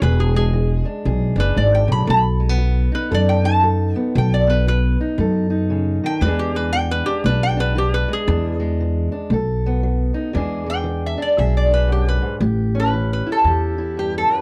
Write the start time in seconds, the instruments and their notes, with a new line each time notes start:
0.01 upright bass E1, steel-string acoustic guitar E2 G#4, resonator guitar played with a steel bar B4
0.20 resonator guitar played with a steel bar G#4
0.35 steel-string acoustic guitar G#3, resonator guitar played with a steel bar G#4
0.53 steel-string acoustic guitar E3
0.85 steel-string acoustic guitar D4
1.05 upright bass B1, steel-string acoustic guitar B2 G#4
1.36 upright bass F#1, steel-string acoustic guitar D4
1.40 resonator guitar played with a steel bar B4
1.55 upright bass G#1, steel-string acoustic guitar G#2, resonator guitar played with a steel bar D5
1.75 resonator guitar played with a steel bar G5
1.87 upright bass B1, steel-string acoustic guitar A2
1.92 resonator guitar played with a steel bar B5
2.05 upright bass B1, steel-string acoustic guitar B2 A4
2.10 resonator guitar played with a steel bar B5
2.40 steel-string acoustic guitar G#3
2.49 steel-string acoustic guitar B3
2.58 steel-string acoustic guitar F#3
2.92 steel-string acoustic guitar D#4, resonator guitar played with a steel bar B4
3.09 steel-string acoustic guitar F#2 A4, upright bass F#2
3.14 resonator guitar played with a steel bar D5
3.29 resonator guitar played with a steel bar G5
3.44 steel-string acoustic guitar D#4, resonator guitar played with a steel bar A5
3.63 steel-string acoustic guitar F#3 A4
3.95 steel-string acoustic guitar B3, resonator guitar played with a steel bar G5
4.15 upright bass B1, steel-string acoustic guitar B2 A4, resonator guitar played with a steel bar G5
4.34 resonator guitar played with a steel bar D5
4.47 steel-string acoustic guitar B3, resonator guitar played with a steel bar B4
4.67 steel-string acoustic guitar F#3, resonator guitar played with a steel bar B4
5.01 steel-string acoustic guitar D#4
5.18 upright bass F#2, steel-string acoustic guitar F#2 A4
5.50 steel-string acoustic guitar D#4
5.70 steel-string acoustic guitar C#3
6.04 steel-string acoustic guitar D#3, resonator guitar played with a steel bar G5
6.21 upright bass E2, steel-string acoustic guitar E2 E3 G#3, resonator guitar played with a steel bar B4
6.26 steel-string acoustic guitar D4 G#4
6.39 resonator guitar played with a steel bar G4
6.55 steel-string acoustic guitar G#3, resonator guitar played with a steel bar B4
6.73 steel-string acoustic guitar E3, resonator guitar played with a steel bar G5
6.91 resonator guitar played with a steel bar B4
7.06 steel-string acoustic guitar D4, resonator guitar played with a steel bar G4
7.24 upright bass B1, steel-string acoustic guitar B2 D4, resonator guitar played with a steel bar B4
7.43 resonator guitar played with a steel bar G5
7.57 steel-string acoustic guitar D4, resonator guitar played with a steel bar B4
7.75 steel-string acoustic guitar E3 D4, resonator guitar played with a steel bar G4
7.94 resonator guitar played with a steel bar B4
8.08 steel-string acoustic guitar G#3
8.13 resonator guitar played with a steel bar G#4
8.27 steel-string acoustic guitar E2 D4, upright bass E2
8.60 steel-string acoustic guitar G#3
8.80 steel-string acoustic guitar E3
9.12 steel-string acoustic guitar D4
9.30 upright bass B1, steel-string acoustic guitar B2 A4
9.66 steel-string acoustic guitar B3
9.83 steel-string acoustic guitar F#3
10.14 steel-string acoustic guitar D#4
10.33 steel-string acoustic guitar E2 E3 G#3 D4 G#4, upright bass E2
10.66 steel-string acoustic guitar G#3, resonator guitar played with a steel bar G5
10.84 steel-string acoustic guitar E3
11.06 resonator guitar played with a steel bar E5
11.18 steel-string acoustic guitar D4
11.22 resonator guitar played with a steel bar D5
11.37 upright bass B1, steel-string acoustic guitar B2 G#4, resonator guitar played with a steel bar E5
11.57 resonator guitar played with a steel bar D5
11.71 steel-string acoustic guitar D4, resonator guitar played with a steel bar B4
11.88 steel-string acoustic guitar F#2
11.92 resonator guitar played with a steel bar G4
12.09 resonator guitar played with a steel bar B4
12.22 steel-string acoustic guitar G#2
12.41 upright bass A1, steel-string acoustic guitar A2 G4
12.75 steel-string acoustic guitar C#4
12.80 resonator guitar played with a steel bar B4
12.94 steel-string acoustic guitar E3
13.13 resonator guitar played with a steel bar B4
13.26 steel-string acoustic guitar E4
13.32 resonator guitar played with a steel bar A4
13.44 upright bass E2, steel-string acoustic guitar E3 G4
13.78 steel-string acoustic guitar E4
13.97 steel-string acoustic guitar G2, resonator guitar played with a steel bar G4
14.18 resonator guitar played with a steel bar A4
14.29 steel-string acoustic guitar F#2
14.35 resonator guitar played with a steel bar B4